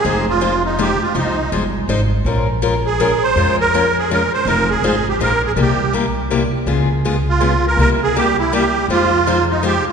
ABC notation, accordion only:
X:1
M:3/4
L:1/8
Q:"Swing" 1/4=163
K:Fm
V:1 name="Accordion"
A F2 E G F | E2 z4 | z3 A2 c- | c B2 A B c |
B A2 G B A | G2 z4 | z3 F2 B | B A G =E G2 |
F3 E G F |]